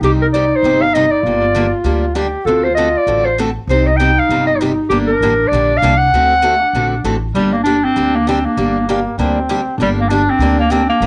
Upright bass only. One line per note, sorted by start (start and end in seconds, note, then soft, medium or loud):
0.01 0.50 C2 medium
0.62 1.11 G1 medium
1.23 1.72 G1 medium
1.84 2.33 D2 medium
2.45 2.94 D2 medium
3.06 3.55 A1 medium
3.67 4.17 C2 medium
4.29 4.78 G1 medium
4.90 5.14 G1 medium
5.21 5.47 A1 medium
5.52 5.78 A#1 medium
5.82 6.08 C2 medium
6.13 6.61 D2 medium
6.73 6.99 A#1 medium
7.04 7.30 A1 medium
7.34 7.83 G1 medium
7.96 8.45 D2 medium
8.57 9.06 G1 medium
9.18 9.67 D2 medium
9.78 10.27 G1 medium
10.39 10.88 D2 medium
11.00 11.07 G1 medium